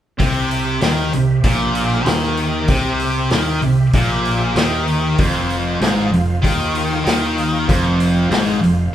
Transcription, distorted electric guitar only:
0.19 0.81 C3 loud
0.82 1.12 D#3 loud
1.14 1.39 C3 medium
1.44 2.07 A#2 loud
2.07 2.68 D#3 loud
2.69 3.31 C3 loud
3.31 3.62 D#3 loud
3.63 3.88 C3 medium
3.95 4.56 A#2 loud
4.56 5.18 D#3 loud
5.19 5.80 F2 loud
5.81 6.12 G#2 loud
6.12 6.37 F2 medium
6.43 7.04 D#3 medium
7.05 7.67 D#3 loud
7.68 8.30 F2 loud
8.30 8.61 G#2 loud
8.62 8.87 F2 medium

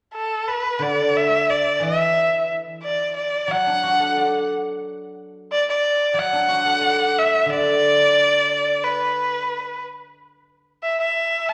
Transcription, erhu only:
0.15 0.50 A4 medium
0.48 0.84 B4 medium
0.83 1.18 D5 medium
1.17 1.52 E5 medium
1.50 1.85 D5 medium
1.83 2.50 E5 medium
2.83 3.14 D5 medium
3.17 3.52 D5 medium
3.51 4.51 F#5 medium
5.52 5.67 D5 medium
5.70 6.20 D5 medium
6.19 7.20 F#5 medium
7.19 7.51 E5 medium
7.50 8.86 D5 loud
8.84 9.83 B4 medium
10.83 10.99 E5 medium
11.00 11.51 E5 medium
11.49 11.53 A5 medium

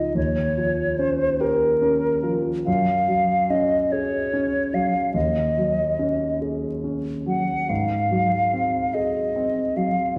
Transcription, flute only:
0.00 0.16 D#5 soft
0.17 1.00 C#5 soft
0.99 1.42 C5 soft
1.41 2.43 A#4 soft
2.66 3.52 F5 medium
3.50 3.93 D#5 soft
3.92 4.76 C#5 soft
4.74 5.14 F5 soft
5.14 6.39 D#5 soft
7.28 7.71 F#5 soft
7.69 8.95 F5 soft
8.94 9.78 D#5 soft
9.77 10.17 F5 soft

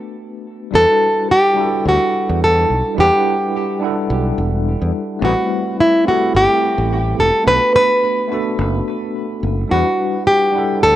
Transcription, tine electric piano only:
0.00 0.69 A3 medium
0.00 0.70 B3 medium
0.00 0.71 D4 medium
0.00 0.71 F#4 medium
0.00 0.72 B4 medium
0.71 1.53 G3 medium
0.71 1.54 D4 medium
0.71 1.55 E4 medium
0.75 1.55 F#4 medium
0.75 1.56 B4 medium
1.54 2.93 G3 medium
1.54 2.94 D4 medium
1.54 2.95 E4 medium
1.59 2.96 F#4 medium
1.59 2.96 A4 medium
2.95 3.77 G3 medium
2.95 3.78 D4 medium
2.95 3.79 E4 medium
2.99 3.81 B4 medium
2.99 3.80 F#5 medium
3.79 5.18 G3 medium
3.79 5.19 D4 medium
3.79 5.19 E4 medium
3.84 5.21 A4 medium
3.84 5.20 F#5 medium
5.19 6.02 A3 medium
5.19 6.03 C4 medium
5.19 6.04 E4 medium
5.25 6.04 G3 medium
5.25 6.05 B4 medium
6.04 7.42 A3 medium
6.04 7.43 C4 medium
6.04 7.44 E4 medium
6.09 7.45 G4 medium
6.09 7.45 A4 medium
7.43 8.26 A3 medium
7.43 8.27 B3 medium
7.43 8.28 D4 medium
7.48 8.28 F#4 medium
7.48 8.29 B4 medium
8.27 9.66 A3 medium
8.27 9.67 B3 medium
8.27 9.68 D4 medium
8.32 9.69 F#4 medium
8.32 9.69 A4 medium
9.68 10.50 G3 medium
9.68 10.51 D4 medium
9.68 10.52 E4 medium
9.72 10.53 F#4 medium
9.72 10.53 B4 medium
10.52 10.96 G3 medium
10.52 10.96 D4 medium
10.52 10.96 E4 medium
10.56 10.96 A4 medium
10.56 10.96 F#5 medium

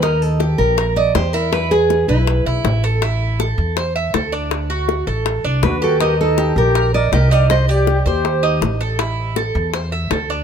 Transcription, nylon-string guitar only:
0.03 0.22 A#4 medium
0.22 0.58 A4 medium
0.58 0.96 A#4 medium
0.96 1.15 D5 medium
1.15 1.33 C5 medium
1.33 1.52 A#4 medium
1.52 1.72 B4 loud
1.71 2.09 G#4 medium
2.09 2.80 E4 medium
5.63 5.81 B4 medium
5.84 6.01 A4 medium
6.01 6.20 A#4 medium
6.21 6.55 A4 medium
6.58 6.92 A#4 medium
6.95 7.13 D5 medium
7.14 7.32 D#5 medium
7.32 7.50 F5 medium
7.51 7.70 D#5 loud
7.70 8.07 D5 medium
8.07 8.77 C5 medium

